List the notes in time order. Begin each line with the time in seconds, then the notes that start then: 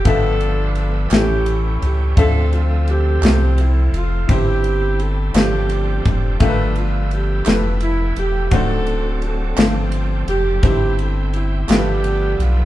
0.05 G1 G2 F3 A3 B3 D4 F4 G4 A4 E5, kick, ride
0.41 ride
0.75 A4, ride
1.11 A1 A2 E3 G3 A3 C#4 E4 G4 A4 E5, snare, clap, ride
1.46 ride
1.82 C#2 G4, ride
2.16 D2 D3 F3 A3 C4 D4 F4 A4 C5 E5, kick, ride
2.53 F4, ride
2.88 C4 G4, ride
3.22 C2 C3 F3 A3 C4 A4 C5, snare, clap, ride
3.58 E4, ride
3.93 F1 F4, ride
4.28 G1 G2 G3 C4 E4 G4 C5, kick, ride
4.64 ride
5.00 A4, ride
5.34 G1 G2 F3 A3 C4 D4 F4 G4 C5, snare, clap, ride
5.69 ride
6.05 F1 G4, kick, ride
6.40 G1 G2 F3 A3 A#3 D4 F4 G4 A4 A#4 E5, kick, ride
6.47 B3 B4
6.76 F4, ride
7.11 G4, ride
7.45 F1 F3 A3 E4 G4 A4, snare, clap, ride
7.54 B4
7.80 E4, ride
8.16 E1 G4, ride
8.51 D1 D3 F#3 A3 C4 D4 D#4 F#4 A4 C5 D5, kick, ride
8.87 ride
9.22 C4 F4 A4, ride
9.56 G1 G2 F3 A3 C4 D4 F4 G4 C5, snare, clap, ride
9.92 ride
10.28 F1 G4, ride
10.62 G1 G2 C4 D#4 E4 G4 C5, kick, ride
10.68 E4
10.99 A4, ride
11.33 E4, ride
11.68 G1 G2 F3 A3 B3 D4 E4 F4 F#4 G4 B4 E5, snare, clap, ride
11.76 G4
12.04 ride
12.39 B1 F4, ride